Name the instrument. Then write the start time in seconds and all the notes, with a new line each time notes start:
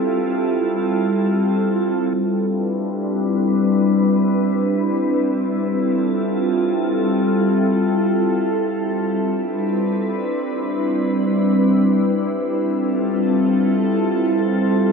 ambient pad
Already playing: G3 C4 E4 F4 A4
2.13 G3 C4 D4 E4 B4
5.64 G3 F4 A4
9.14 G3 C4 D4 E4 B4
12.65 F4 A4